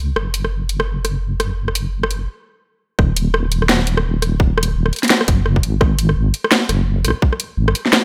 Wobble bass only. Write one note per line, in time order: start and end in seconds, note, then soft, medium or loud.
0.00 0.15 C#2 medium
0.16 2.28 F#1 medium
2.99 4.04 D#1 loud
4.04 4.74 D#1 medium
4.75 4.92 D#1 loud
5.28 5.62 F#1 loud
5.63 6.15 G#1 loud
6.16 6.33 G#1 loud
6.69 7.06 F#1 medium
7.05 7.14 A#1 medium
7.57 7.74 G#1 loud